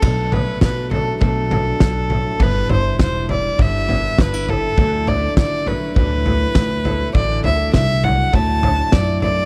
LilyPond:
<<
  \new Staff \with { instrumentName = "Fiddle" } { \time 4/4 \key b \phrygian \tempo 4 = 101 a'8 b'8 b'8 a'8 a'2 | b'8 c''8 c''8 d''8 e''4 b'8 a'8~ | a'8 d''8 d''8 b'8 b'2 | d''8 e''8 e''8 fis''8 a''4 d''8 d''8 | }
  \new Staff \with { instrumentName = "Steel-string acoustic guitar" } { \time 4/4 \key b \phrygian << { d'8 d'8 fis'4. d'4. | <g b e'>4 e'4. b8 d'16 e'16 e'8 | <fis d' e'>8 d'8 e'4. d'8 e'8 a'8 | r8 d'8 e'4. d'8 e'8 a'8 | } \\ { b,4. fis8 b,4 b,8 a,8 | g,4. g8 d2 | d4. fis8 a,2 | d4. fis8 a,2 | } >> }
  \new Staff \with { instrumentName = "Steel-string acoustic guitar" } { \time 4/4 \key b \phrygian <b, fis a d' a'>8 <a d' a'>8 <fis a d' a'>8 <a d' a'>8 <b, fis a d' a'>8 <a d' a'>8 <fis a d' a'>8 <a d' a'>8 | <g d' e' b'>8 <d' e'>8 <g d' e'>8 <d' e' b'>8 <g d' e' b'>8 <d' e' b'>8 <g d' e' b'>8 <d' e' b'>8 | <d e a e' fis'>8 <a e' fis'>8 <e a e' fis'>8 <a e' fis'>8 <d e a e' fis'>8 <a e' fis'>8 <e a e' fis'>8 <a e' fis'>8 | <d e a e' fis'>8 <a e' fis'>8 <e a e' fis'>8 <a e' fis'>8 <d e a e' fis'>8 <a e' fis'>8 <e a e' fis'>8 <a e' fis'>8 | }
  \new Staff \with { instrumentName = "Upright bass" } { \clef bass \time 4/4 \key b \phrygian b,,4 b,4 b,,4 b,,4 | g,,8 g,,8 e,,4 g,,4 g,,4 | d,4 d4 d,4 d,4 | a,,8 d,8 c,4 d,4 fis,4 | }
  \new DrumStaff \with { instrumentName = "Drums" } \drummode { \time 4/4 <cymc bd tomfh>8 tomfh8 <bd sn tomfh>8 tomfh8 <bd tomfh>8 tomfh8 <bd sn tomfh>8 tomfh8 | <bd tomfh>8 tomfh8 <bd sn tomfh>8 tomfh8 <bd tomfh>8 tomfh8 <bd sn tomfh>8 tomfh8 | <bd tomfh>8 tomfh8 <bd sn tomfh>8 tomfh8 <bd tomfh>8 tomfh8 <bd sn tomfh>8 tomfh8 | <bd tomfh>8 tomfh8 <bd sn tomfh>8 tomfh8 <bd tomfh>8 tomfh8 <bd sn tomfh>8 tomfh8 | }
>>